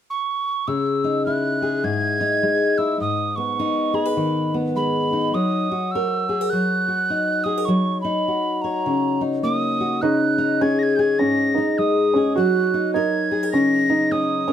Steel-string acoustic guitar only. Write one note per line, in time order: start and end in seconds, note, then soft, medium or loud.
0.68 1.85 C#3 medium
1.04 2.20 D#4 soft
1.27 2.77 E4 medium
1.62 3.92 G#4 soft
1.84 2.99 G#2 medium
2.21 3.37 D#4 medium
2.43 2.99 G#3 medium
2.78 2.99 E4 medium
3.00 5.35 G#2 medium
3.37 4.53 B3 soft
3.59 5.12 D#4 medium
3.94 4.05 G#4 medium
4.05 5.34 B4 soft
4.17 5.32 D#3 medium
4.54 5.35 B3 medium
4.75 5.32 G#3 medium
5.13 5.71 D#4 medium
5.34 6.52 F#3 medium
5.72 6.87 F#4 soft
5.95 6.29 A#4 medium
6.29 6.41 G#4 medium
6.41 7.45 A#4 soft
6.53 7.67 F#3 medium
6.88 7.66 F#4 soft
7.10 8.04 D#4 medium
7.46 7.58 G#4 medium
7.58 7.69 A#4 soft
7.68 10.00 F#3 medium
8.05 9.21 D#4 medium
8.28 9.79 F#4 medium
8.64 10.41 C#5 soft
8.86 10.00 C#3 medium
9.21 10.05 D#4 soft
9.43 9.99 A#3 soft
9.80 10.00 F#4 soft
10.02 11.20 C#3 medium
10.38 11.57 D#4 soft
10.61 10.97 G#4 medium
10.99 12.15 G#4 medium
11.21 12.37 G#2 medium
11.58 12.74 D#4 medium
11.79 12.34 G#3 medium
12.16 12.38 G#4 soft
12.37 14.53 F#3 medium
12.74 13.88 D#4 medium
12.96 13.31 A#4 medium
13.31 13.43 G#4 medium
13.43 14.47 A#4 soft
13.53 14.53 C#3 medium
13.89 14.53 D#4 medium
14.12 14.53 C#4 medium
14.48 14.53 A#4 medium